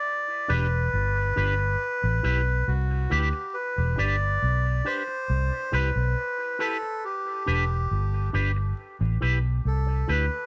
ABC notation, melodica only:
X:1
M:4/4
L:1/8
Q:1/4=69
K:Em
V:1 name="Melodica"
d B4- B F G | B d2 c2 B2 A | G3 z3 A B |]